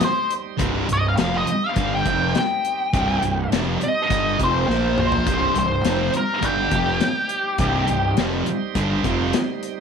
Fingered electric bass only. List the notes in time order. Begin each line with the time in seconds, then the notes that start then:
0.60 C1
0.90 C1
1.19 F1
1.48 muted fingered electric bass stroke
1.76 G1
2.06 F1
2.93 C1
3.22 C1
3.52 F1
3.81 muted fingered electric bass stroke
4.10 G1
4.40 F1
4.69 A#1
5.27 C1
5.56 C1
5.84 F1
6.14 muted fingered electric bass stroke
6.43 G1
6.72 F1
7.59 C1
7.89 C1
8.17 F1
8.47 muted fingered electric bass stroke
8.75 G1
9.05 F1